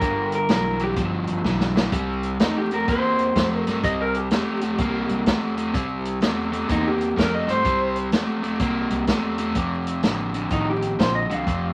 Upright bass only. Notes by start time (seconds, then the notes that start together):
0.01 G1
0.49 B1
0.97 G1
1.28 G1
1.44 B1
1.92 C2
2.41 E2
2.88 E2
3.35 F2
3.67 G2
3.84 C2
4.31 E2
4.78 C2
5.09 C2
5.26 E2
5.74 C2
6.21 E2
6.69 E2
7.17 F2
7.47 G2
7.65 C2
8.11 E2
8.60 C2
8.90 C2
9.08 E2
9.55 F1
10.03 A1
10.51 A1
10.99 A#1
11.30 C2
11.47 F1